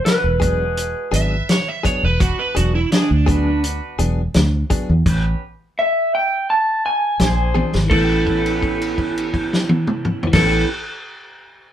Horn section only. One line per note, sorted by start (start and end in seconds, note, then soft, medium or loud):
0.05 0.23 B3 medium
0.05 0.21 D4 medium
0.05 0.22 F#4 medium
0.05 0.23 B4 medium
0.41 1.13 G#3 medium
0.41 1.13 D4 medium
0.41 1.13 F#4 medium
0.41 1.13 G#4 medium
2.20 2.56 B3 medium
2.20 2.56 D4 medium
2.20 2.56 F#4 medium
2.20 2.56 B4 medium
2.91 3.09 G#3 medium
2.91 3.07 D4 medium
2.91 3.08 F#4 medium
2.91 3.09 G#4 medium
3.27 3.99 B3 medium
3.27 3.99 D4 medium
3.27 3.99 F#4 medium
3.27 3.99 B4 loud
5.06 5.42 B3 medium
5.06 5.41 C#4 medium
5.06 5.42 G4 medium
5.06 5.42 B4 medium
7.19 7.78 C4 medium
7.19 7.77 D4 medium
7.19 7.77 G#4 medium
7.19 7.78 C5 loud
7.91 10.22 B3 medium
7.91 10.22 C#4 medium
7.91 10.22 G4 medium
7.91 10.22 B4 medium
10.34 10.64 B3 medium
10.34 10.64 C#4 medium
10.34 10.64 G4 medium
10.34 10.64 B4 medium